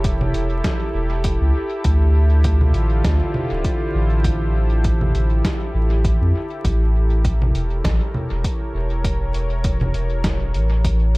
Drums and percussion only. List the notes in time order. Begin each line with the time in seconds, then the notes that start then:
0.04 kick, closed hi-hat
0.21 low conga
0.34 closed hi-hat
0.64 kick, snare, closed hi-hat
1.24 kick, closed hi-hat
1.84 kick, closed hi-hat
2.44 kick, closed hi-hat
2.61 low conga
2.74 closed hi-hat
3.04 kick, snare, closed hi-hat
3.34 low conga
3.64 kick, closed hi-hat
4.24 kick, closed hi-hat
4.84 kick, closed hi-hat
5.01 low conga
5.15 closed hi-hat
5.45 kick, snare, closed hi-hat
6.05 kick, closed hi-hat
6.65 kick, closed hi-hat
7.25 kick, closed hi-hat
7.42 low conga
7.55 closed hi-hat
7.84 kick, snare, closed hi-hat
8.14 low conga
8.44 kick, closed hi-hat
9.04 kick, closed hi-hat
9.34 closed hi-hat
9.64 kick, closed hi-hat
9.81 low conga
9.94 closed hi-hat
10.24 kick, snare, closed hi-hat
10.54 closed hi-hat
10.85 kick, closed hi-hat